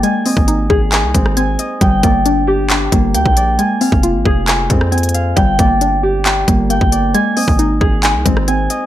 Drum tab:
HH |x---o---x-------x---x---x---x---|x---x---x-------x---x---x---x---|x---o---x-------x---x---xxxxx---|x---x---x-------x---x---x---x---|
CP |----------------x---------------|----------------x---------------|----------------x---------------|----------------x---------------|
SD |----------------------r---------|--------------------------------|----------------------r---------|--------------------------------|
BD |------o-----o-------o-----------|o---o---------------o-----o-----|------o-----o-------o-----------|o---o---------------o-----o-----|

HH |x---o---x-------x---x---x---x---|
CP |----------------x---------------|
SD |----------------------r---------|
BD |------o-----o-------o-----------|